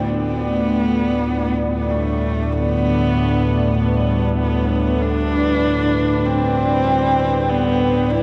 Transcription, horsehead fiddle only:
0, 0, Header, 1, 2, 480
1, 0, Start_track
1, 0, Tempo, 1242236
1, 15, Time_signature, 4, 2, 24, 8
1, 3179, End_track
2, 0, Start_track
2, 0, Title_t, "Horsehead fiddle"
2, 0, Program_c, 0, 110
2, 15, Note_on_c, 0, 59, 85
2, 736, Note_on_c, 0, 57, 80
2, 742, Note_off_c, 0, 59, 0
2, 980, Note_on_c, 0, 59, 98
2, 986, Note_off_c, 0, 57, 0
2, 1460, Note_off_c, 0, 59, 0
2, 1463, Note_on_c, 0, 59, 82
2, 1938, Note_on_c, 0, 62, 101
2, 1944, Note_off_c, 0, 59, 0
2, 2416, Note_on_c, 0, 60, 99
2, 2422, Note_off_c, 0, 62, 0
2, 2895, Note_on_c, 0, 59, 94
2, 2901, Note_off_c, 0, 60, 0
2, 3130, Note_on_c, 0, 64, 111
2, 3136, Note_off_c, 0, 59, 0
2, 3179, Note_off_c, 0, 64, 0
2, 3179, End_track
0, 0, End_of_file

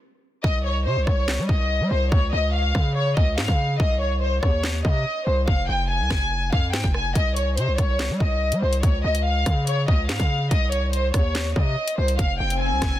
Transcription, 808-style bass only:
0, 0, Header, 1, 2, 480
1, 0, Start_track
1, 0, Tempo, 419580
1, 505, Time_signature, 4, 2, 24, 8
1, 14865, End_track
2, 0, Start_track
2, 0, Title_t, "808-style bass"
2, 0, Program_c, 0, 38
2, 504, Note_on_c, 0, 36, 104
2, 985, Note_on_c, 0, 48, 99
2, 1002, Note_off_c, 0, 36, 0
2, 1105, Note_on_c, 0, 36, 104
2, 1122, Note_off_c, 0, 48, 0
2, 1219, Note_off_c, 0, 36, 0
2, 1225, Note_on_c, 0, 36, 109
2, 1585, Note_on_c, 0, 55, 102
2, 1602, Note_off_c, 0, 36, 0
2, 1699, Note_off_c, 0, 55, 0
2, 1705, Note_on_c, 0, 36, 105
2, 2064, Note_on_c, 0, 55, 99
2, 2081, Note_off_c, 0, 36, 0
2, 2178, Note_off_c, 0, 55, 0
2, 2183, Note_on_c, 0, 36, 111
2, 2414, Note_off_c, 0, 36, 0
2, 2424, Note_on_c, 0, 37, 111
2, 2655, Note_off_c, 0, 37, 0
2, 2664, Note_on_c, 0, 37, 108
2, 3125, Note_off_c, 0, 37, 0
2, 3145, Note_on_c, 0, 49, 102
2, 3606, Note_off_c, 0, 49, 0
2, 3626, Note_on_c, 0, 37, 104
2, 3865, Note_on_c, 0, 44, 100
2, 3882, Note_off_c, 0, 37, 0
2, 3979, Note_off_c, 0, 44, 0
2, 3984, Note_on_c, 0, 49, 102
2, 4330, Note_off_c, 0, 49, 0
2, 4345, Note_on_c, 0, 36, 112
2, 5036, Note_off_c, 0, 36, 0
2, 5065, Note_on_c, 0, 39, 102
2, 5526, Note_off_c, 0, 39, 0
2, 5545, Note_on_c, 0, 48, 104
2, 5775, Note_off_c, 0, 48, 0
2, 6025, Note_on_c, 0, 36, 110
2, 6255, Note_off_c, 0, 36, 0
2, 6265, Note_on_c, 0, 29, 111
2, 6495, Note_off_c, 0, 29, 0
2, 6505, Note_on_c, 0, 29, 107
2, 6865, Note_on_c, 0, 36, 98
2, 6882, Note_off_c, 0, 29, 0
2, 6979, Note_off_c, 0, 36, 0
2, 6985, Note_on_c, 0, 29, 102
2, 7446, Note_off_c, 0, 29, 0
2, 7465, Note_on_c, 0, 41, 106
2, 7705, Note_on_c, 0, 44, 102
2, 7722, Note_off_c, 0, 41, 0
2, 7816, Note_off_c, 0, 44, 0
2, 7823, Note_on_c, 0, 29, 100
2, 8170, Note_off_c, 0, 29, 0
2, 8185, Note_on_c, 0, 36, 104
2, 8664, Note_on_c, 0, 48, 99
2, 8681, Note_off_c, 0, 36, 0
2, 8784, Note_on_c, 0, 36, 101
2, 8801, Note_off_c, 0, 48, 0
2, 8898, Note_off_c, 0, 36, 0
2, 8904, Note_on_c, 0, 36, 107
2, 9265, Note_on_c, 0, 55, 98
2, 9282, Note_off_c, 0, 36, 0
2, 9379, Note_off_c, 0, 55, 0
2, 9385, Note_on_c, 0, 36, 107
2, 9745, Note_on_c, 0, 55, 97
2, 9762, Note_off_c, 0, 36, 0
2, 9859, Note_off_c, 0, 55, 0
2, 9865, Note_on_c, 0, 36, 112
2, 10095, Note_off_c, 0, 36, 0
2, 10105, Note_on_c, 0, 37, 110
2, 10335, Note_off_c, 0, 37, 0
2, 10345, Note_on_c, 0, 37, 111
2, 10806, Note_off_c, 0, 37, 0
2, 10825, Note_on_c, 0, 49, 103
2, 11286, Note_off_c, 0, 49, 0
2, 11305, Note_on_c, 0, 37, 108
2, 11546, Note_on_c, 0, 44, 98
2, 11563, Note_off_c, 0, 37, 0
2, 11657, Note_off_c, 0, 44, 0
2, 11664, Note_on_c, 0, 49, 105
2, 12010, Note_off_c, 0, 49, 0
2, 12025, Note_on_c, 0, 36, 110
2, 12716, Note_off_c, 0, 36, 0
2, 12745, Note_on_c, 0, 39, 102
2, 13206, Note_off_c, 0, 39, 0
2, 13225, Note_on_c, 0, 48, 104
2, 13455, Note_off_c, 0, 48, 0
2, 13705, Note_on_c, 0, 36, 111
2, 13935, Note_off_c, 0, 36, 0
2, 13945, Note_on_c, 0, 29, 107
2, 14175, Note_off_c, 0, 29, 0
2, 14186, Note_on_c, 0, 29, 112
2, 14545, Note_on_c, 0, 36, 98
2, 14562, Note_off_c, 0, 29, 0
2, 14659, Note_off_c, 0, 36, 0
2, 14664, Note_on_c, 0, 29, 102
2, 14865, Note_off_c, 0, 29, 0
2, 14865, End_track
0, 0, End_of_file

